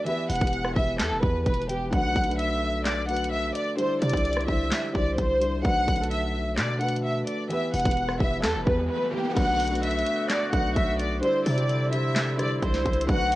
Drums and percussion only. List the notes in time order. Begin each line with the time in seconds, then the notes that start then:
0.06 closed hi-hat
0.30 closed hi-hat, open hi-hat
0.36 closed hi-hat
0.41 kick, closed hi-hat
0.47 closed hi-hat
0.53 closed hi-hat
0.65 cross-stick
0.76 kick
0.99 snare, clap, closed hi-hat
1.23 kick
1.46 kick, closed hi-hat
1.54 closed hi-hat
1.61 closed hi-hat
1.69 closed hi-hat
1.92 kick, closed hi-hat
2.16 kick, closed hi-hat
2.24 closed hi-hat
2.31 closed hi-hat
2.39 closed hi-hat
2.85 snare, clap, closed hi-hat
3.09 closed hi-hat
3.17 closed hi-hat
3.24 closed hi-hat
3.55 closed hi-hat
3.79 closed hi-hat
4.02 closed hi-hat
4.10 kick, closed hi-hat
4.17 closed hi-hat
4.25 closed hi-hat
4.33 cross-stick, closed hi-hat
4.41 closed hi-hat
4.48 kick
4.72 snare, clap, closed hi-hat
4.95 kick
5.18 kick, closed hi-hat
5.41 closed hi-hat
5.65 kick, closed hi-hat
5.88 kick, closed hi-hat
5.96 closed hi-hat
6.03 closed hi-hat
6.11 closed hi-hat
6.58 snare, clap, closed hi-hat
6.81 closed hi-hat
6.89 closed hi-hat
6.96 closed hi-hat
7.27 closed hi-hat
7.51 closed hi-hat
7.74 closed hi-hat, open hi-hat
7.80 closed hi-hat
7.85 kick, closed hi-hat
7.91 closed hi-hat
7.97 closed hi-hat
8.09 cross-stick
8.20 kick
8.44 snare, clap, closed hi-hat
8.67 kick
9.37 kick, closed hi-hat, crash
9.60 closed hi-hat, open hi-hat
9.68 closed hi-hat
9.75 closed hi-hat
9.83 closed hi-hat
9.91 closed hi-hat
9.99 closed hi-hat
10.06 closed hi-hat
10.30 snare, clap, closed hi-hat
10.53 kick, closed hi-hat
10.76 kick, closed hi-hat
10.99 closed hi-hat
11.23 closed hi-hat
11.46 closed hi-hat, open hi-hat
11.58 closed hi-hat
11.69 closed hi-hat
11.93 closed hi-hat
12.16 snare, clap, closed hi-hat
12.39 cross-stick, closed hi-hat
12.62 kick, closed hi-hat
12.74 snare
12.86 kick, closed hi-hat
12.93 closed hi-hat
13.01 closed hi-hat
13.09 kick, closed hi-hat
13.32 closed hi-hat, open hi-hat